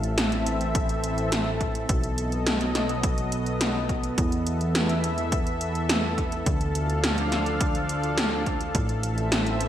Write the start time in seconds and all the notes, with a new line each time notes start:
Already playing: A1 E3 C4 A4 E5
0.04 closed hi-hat
0.18 snare, closed hi-hat
0.32 closed hi-hat
0.46 closed hi-hat
0.61 closed hi-hat
0.75 kick, closed hi-hat
0.89 closed hi-hat
1.04 closed hi-hat
1.18 closed hi-hat
1.32 snare, closed hi-hat
1.61 kick, closed hi-hat
1.75 closed hi-hat
1.89 B1 F#3 B3 D#5, kick, closed hi-hat
2.03 closed hi-hat
2.18 closed hi-hat
2.32 closed hi-hat
2.47 snare, closed hi-hat
2.61 closed hi-hat
2.75 snare, closed hi-hat
2.89 closed hi-hat
3.03 kick, closed hi-hat
3.18 closed hi-hat
3.32 closed hi-hat
3.46 closed hi-hat
3.61 snare, closed hi-hat
3.89 kick, closed hi-hat
4.04 closed hi-hat
4.18 E2 E3 A4 E5, kick, closed hi-hat
4.32 closed hi-hat
4.47 closed hi-hat
4.61 closed hi-hat
4.75 snare, closed hi-hat
4.89 closed hi-hat
5.04 closed hi-hat
5.18 closed hi-hat
5.32 kick, closed hi-hat
5.47 closed hi-hat
5.61 closed hi-hat
5.75 closed hi-hat
5.89 snare, closed hi-hat
6.18 kick, closed hi-hat
6.32 closed hi-hat
6.46 D2 F3 D4 F5, kick, closed hi-hat
6.61 closed hi-hat
6.75 closed hi-hat
6.90 closed hi-hat
7.04 snare, closed hi-hat
7.18 closed hi-hat
7.32 snare, closed hi-hat
7.46 closed hi-hat
7.61 kick, closed hi-hat
7.75 closed hi-hat
7.89 closed hi-hat
8.03 closed hi-hat
8.18 snare, closed hi-hat
8.46 kick, closed hi-hat
8.61 closed hi-hat
8.74 A1 E3 C4 E5, kick, closed hi-hat
8.89 closed hi-hat
9.03 closed hi-hat
9.18 closed hi-hat
9.32 snare, closed hi-hat
9.47 closed hi-hat
9.61 closed hi-hat